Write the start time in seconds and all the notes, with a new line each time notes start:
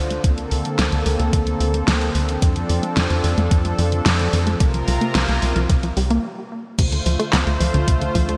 Already playing: D2 D3 D4 F4 C5
0.10 A3, closed hi-hat
0.24 D2 A#3 C4 D4 A4, kick, closed hi-hat
0.38 A#3, closed hi-hat
0.51 D2 A3, open hi-hat
0.65 F3, closed hi-hat
0.79 D2 D3, snare, closed hi-hat
0.92 D2 F3, closed hi-hat
1.06 D2 A3, open hi-hat
1.20 D2 A#3, closed hi-hat
1.33 D2 D3, kick, closed hi-hat
1.47 F3, closed hi-hat
1.60 D2 A3, open hi-hat
1.74 A#3, closed hi-hat
1.88 D2 D4, snare, closed hi-hat
2.01 closed hi-hat
2.15 D2 A3, open hi-hat
2.29 F3, closed hi-hat
2.42 F2 C3 F3 D4 A4, kick, closed hi-hat
2.56 D3, closed hi-hat
2.69 F2 F3, open hi-hat
2.83 A3, closed hi-hat
2.97 F2 C3, snare, closed hi-hat
3.10 F2 D3, closed hi-hat
3.24 F2 F3, open hi-hat
3.38 F2 A3, closed hi-hat
3.51 F2 C4, kick, closed hi-hat
3.65 A3, closed hi-hat
3.79 F2 F3, open hi-hat
3.92 D3, closed hi-hat
4.06 F2 C3, snare, closed hi-hat
4.19 D3, closed hi-hat
4.33 F2 F3, open hi-hat
4.47 A3, closed hi-hat
4.60 C2 C3 F4 A#4, kick, closed hi-hat
4.74 F3, closed hi-hat
4.88 C2 G3, open hi-hat
5.01 A#3, closed hi-hat
5.15 C2 C4, snare, closed hi-hat
5.29 C2 A#3, closed hi-hat
5.42 C2 G3, open hi-hat
5.56 C2 F3, closed hi-hat
5.70 C2 C3, kick, closed hi-hat
5.83 F3, closed hi-hat
5.97 C2 G3, open hi-hat
6.10 A#3, closed hi-hat
6.79 D2 C3 D3 A3 F4 C5, kick, closed hi-hat, crash
6.92 D3, closed hi-hat
7.06 D2 F3, open hi-hat
7.20 A3, closed hi-hat
7.33 D2 C4, snare, clap, closed hi-hat
7.47 D2 A3, closed hi-hat
7.60 D2 F3, open hi-hat
7.74 D2 D3, closed hi-hat
7.88 D2 C3, kick, closed hi-hat
8.01 D3, closed hi-hat
8.15 D2 F3, kick, open hi-hat
8.29 A3, closed hi-hat